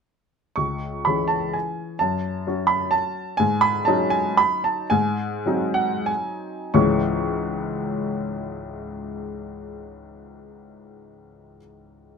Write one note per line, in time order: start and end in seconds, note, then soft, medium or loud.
0.56 1.04 C#2 soft
0.56 1.04 C#6 medium
1.05 1.97 E3 soft
1.05 1.98 C#4 soft
1.05 1.98 G#4 soft
1.05 1.30 B5 medium
1.28 1.53 A5 medium
1.53 2.00 G#5 medium
1.99 2.45 F#2 medium
1.99 2.68 A5 medium
2.47 3.36 F#3 soft
2.47 3.36 C#4 soft
2.47 3.36 F#4 soft
2.67 2.92 B5 medium
2.91 3.38 A5 medium
3.37 3.85 G#2 medium
3.37 3.61 G#5 medium
3.61 3.86 B5 medium
3.85 4.86 F#3 medium
3.85 4.87 C#4 medium
3.85 4.87 D#4 medium
3.85 4.11 A5 medium
4.10 4.37 G#5 medium
4.37 4.64 B5 medium
4.64 4.90 A5 medium
4.90 5.44 G#2 medium
4.90 5.76 G#5 medium
5.46 6.72 F#3 medium
5.46 6.72 C4 soft
5.46 6.72 D#4 medium
5.74 6.07 F#5 medium
6.06 6.74 G#5 medium
6.74 11.57 C#2 medium
6.74 11.57 G#2 medium
6.74 11.58 E3 medium
6.74 11.59 G#3 medium
6.74 11.58 C#4 medium
6.74 11.58 E4 medium
6.74 11.57 C#6 medium